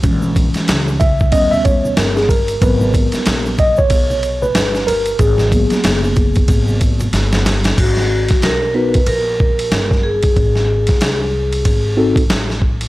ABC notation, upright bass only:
X:1
M:4/4
L:1/16
Q:"Swing 16ths" 1/4=93
K:G#m
V:1 name="Upright bass" clef=bass
A,,,3 z C,,4 D,,4 =G,,,4 | G,,,3 z A,,,4 B,,,4 =G,,,4 | G,,,3 z F,,,4 G,,,4 =G,,,4 | G,,,3 z B,,,4 A,,,4 =G,,,4 |
G,,,3 z ^B,,,4 G,,,4 =A,,,4 |]